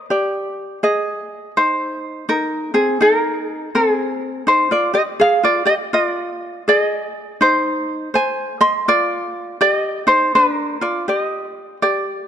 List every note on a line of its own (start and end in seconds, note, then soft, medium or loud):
0.10 0.78 G4 medium
0.10 0.83 D5 medium
0.83 1.51 G#4 medium
0.83 1.57 D#5 medium
1.57 2.24 D#4 medium
1.57 2.29 C5 medium
2.29 2.70 D#4 medium
2.29 2.74 A#4 medium
2.74 2.98 C4 medium
2.74 3.01 G#4 medium
3.01 3.69 D#4 medium
3.01 3.69 A#4 medium
3.75 4.42 C4 medium
3.75 4.48 G#4 medium
4.47 4.67 D#4 medium
4.47 4.70 C5 medium
4.71 4.91 F4 medium
4.71 4.94 D5 medium
4.94 5.00 G4 medium
4.94 5.01 D#5 medium
5.20 5.40 G#4 medium
5.20 5.43 F5 medium
5.43 5.64 F4 medium
5.43 5.66 D5 medium
5.65 5.73 G4 medium
5.65 5.73 D#5 medium
5.93 6.61 F4 medium
5.93 6.05 D#5 medium
6.05 6.68 D5 medium
6.68 7.35 G#4 medium
6.68 7.41 D#5 medium
7.41 8.09 D#4 medium
7.41 8.13 C5 medium
8.14 8.56 C5 medium
8.14 8.61 G#5 loud
8.61 8.84 D#5 medium
8.61 8.87 C6 medium
8.88 9.56 F4 medium
8.88 9.61 D5 medium
9.61 10.03 G4 medium
9.61 9.73 D5 medium
9.73 10.07 D#5 medium
10.07 10.31 D#4 medium
10.07 10.34 C5 medium
10.35 10.77 D4 medium
10.35 10.53 B4 medium
10.53 10.81 A#4 medium
10.81 11.05 F4 medium
10.81 11.08 D5 medium
11.08 11.76 G4 medium
11.08 11.76 D#5 medium
11.82 12.28 G4 medium
11.82 12.28 D5 medium